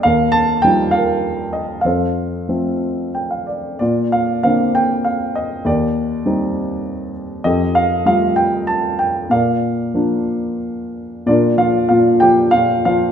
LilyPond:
<<
  \new Staff \with { instrumentName = "Grand piano" } { \time 3/4 \key bes \major \tempo 4 = 95 << { f''8 a''8 g''8 f''4 ees''8 | f''2 g''16 f''16 d''8 | d''8 f''8 f''8 g''8 f''8 ees''8 | d''2~ d''8 r8 |
ees''8 f''8 f''8 g''8 a''8 g''8 | f''2 r4 | d''8 f''8 f''8 g''8 f''8 f''8 | } \\ { bes'4. bes'4. | <a' c''>2 r4 | f'4. r4. | <g' bes'>2~ <g' bes'>8 r8 |
<g' a'>4. r4. | <bes' d''>2 r4 | <d' f' bes'>8 f'8 f'8 g'8 f'8 f'8 | } >> }
  \new Staff \with { instrumentName = "Grand piano" } { \clef bass \time 3/4 \key bes \major ees,4 <f g ees'>2 | f,4 <f a c'>2 | bes,4 <d bes c'>2 | ees,4 <g c' ees'>2 |
f,4 <g a f'>2 | bes,4 <f bes d'>2 | bes,8 f8 bes,8 f8 bes,8 f8 | }
>>